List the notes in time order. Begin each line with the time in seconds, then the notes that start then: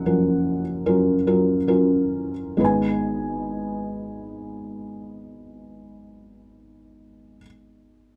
Already playing: F#1 F#2 F3 F#3 C#4 A#4 F#5
0.06 F3 F#3 C#4 A#4
0.86 F#3 C#4 F4 A#4
1.27 F#3 C#4 F4 A#4
1.67 F#3 C#4 F4 A#4
2.57 G#1 G#3 B3 D#4 B4
2.64 G#5